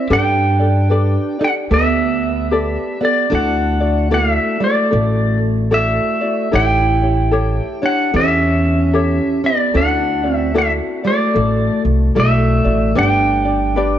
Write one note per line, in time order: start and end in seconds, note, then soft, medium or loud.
0.00 0.13 E5 medium
0.10 1.15 G2 medium
0.10 1.37 D4 medium
0.10 0.60 G4 medium
0.10 0.59 A4 medium
0.10 0.60 B4 medium
0.10 0.58 D5 medium
0.10 1.44 G5 loud
0.59 0.89 G4 soft
0.59 0.89 A4 soft
0.59 0.90 D5 medium
0.90 1.40 G4 medium
0.90 1.39 A4 medium
0.90 1.40 B4 medium
0.90 1.38 D5 medium
1.39 1.49 D4 medium
1.39 1.70 G4 soft
1.39 1.70 A4 medium
1.39 1.71 D5 medium
1.44 1.52 F#5 medium
1.70 2.75 D2 medium
1.70 2.97 B3 medium
1.70 2.50 G4 medium
1.70 2.52 A4 medium
1.70 2.50 B4 medium
1.70 2.52 D5 medium
1.70 3.06 E5 medium
2.51 3.01 G4 medium
2.51 3.00 A4 medium
2.51 3.01 B4 medium
2.51 2.99 D5 medium
3.01 3.30 B3 medium
3.01 3.32 G4 soft
3.01 3.30 A4 soft
3.01 3.30 D5 soft
3.05 3.35 D5 medium
3.30 4.36 D2 medium
3.30 4.07 D4 medium
3.30 3.81 E4 medium
3.30 3.80 F#4 medium
3.30 3.80 A4 medium
3.30 3.79 D5 medium
3.35 4.14 F#5 loud
3.80 4.10 E4 soft
3.80 4.10 F#4 soft
3.80 4.10 D5 medium
4.11 4.29 A#3 medium
4.11 4.61 E4 medium
4.11 4.60 F#4 medium
4.11 4.60 A4 medium
4.11 4.59 D5 medium
4.11 4.33 F5 medium
4.29 4.58 A3 medium
4.29 4.64 E5 medium
4.60 5.37 A3 medium
4.60 4.90 E4 soft
4.60 4.90 F#4 medium
4.60 4.90 D5 medium
4.60 5.39 D5 medium
4.90 5.97 A1 medium
4.90 5.71 E4 medium
4.90 5.71 F#4 medium
4.90 5.70 A4 medium
4.90 5.71 D5 medium
5.71 6.49 A3 medium
5.71 6.21 E4 medium
5.71 6.21 F#4 medium
5.71 6.21 A4 medium
5.71 6.20 D5 medium
5.71 6.55 E5 medium
6.21 6.51 E4 soft
6.21 6.52 F#4 soft
6.21 6.51 D5 soft
6.51 7.58 A1 medium
6.51 7.02 E4 medium
6.51 7.79 E4 medium
6.51 7.02 G4 medium
6.51 7.02 A4 medium
6.51 7.01 C#5 medium
6.55 7.85 G5 loud
7.02 7.31 E4 soft
7.02 7.31 G4 medium
7.02 7.31 C#5 medium
7.31 7.82 E4 medium
7.31 7.82 G4 medium
7.31 7.81 A4 medium
7.31 7.81 C#5 medium
7.82 8.12 D4 medium
7.82 8.12 E4 soft
7.82 8.13 G4 soft
7.82 8.12 C#5 medium
7.82 8.16 F#5 medium
8.13 9.18 E2 medium
8.13 9.40 C#4 medium
8.13 8.93 E4 medium
8.13 8.93 G4 medium
8.13 8.93 A4 medium
8.13 8.94 C#5 medium
8.13 9.41 E5 medium
8.93 9.43 E4 medium
8.93 9.43 G4 medium
8.93 9.43 A4 medium
8.93 9.43 C#5 medium
9.44 9.73 B3 medium
9.44 9.73 E4 soft
9.44 9.75 G4 soft
9.44 9.77 D5 medium
9.74 10.79 D2 medium
9.74 10.30 D4 medium
9.74 10.24 E4 medium
9.74 10.23 F#4 medium
9.74 10.23 A4 medium
9.74 10.22 D5 medium
9.74 10.36 F#5 loud
10.24 10.54 E4 soft
10.24 10.54 F#4 soft
10.24 10.54 D5 medium
10.30 10.51 C4 medium
10.36 10.58 E5 loud
10.54 10.69 A3 medium
10.54 11.04 E4 medium
10.54 11.04 F#4 medium
10.54 11.03 A4 medium
10.54 11.02 D5 medium
10.58 10.71 E5 medium
11.04 11.81 A3 medium
11.04 11.34 E4 soft
11.04 11.34 F#4 medium
11.04 11.34 D5 medium
11.04 11.82 D5 medium
11.34 11.67 A1 medium
11.34 12.14 E4 medium
11.34 12.15 F#4 medium
11.34 12.14 A4 medium
11.34 12.16 D5 medium
11.85 12.12 C2 medium
12.15 12.61 B1 medium
12.15 12.92 A3 medium
12.15 12.65 E4 medium
12.15 12.64 F#4 medium
12.15 12.64 A4 medium
12.15 12.63 D5 medium
12.20 12.98 E5 medium
12.64 12.93 A1 medium
12.64 12.95 E4 soft
12.64 12.95 F#4 soft
12.64 12.95 D5 medium
12.95 13.99 G1 medium
12.95 13.99 D4 medium
12.95 13.45 D4 medium
12.95 13.45 G4 medium
12.95 13.45 B4 medium
12.95 13.44 D5 medium
12.95 13.99 G5 loud
13.45 13.76 D4 soft
13.45 13.76 G4 soft
13.45 13.76 D5 medium
13.76 13.99 D4 medium
13.76 13.99 G4 medium
13.76 13.99 B4 medium
13.76 13.99 D5 medium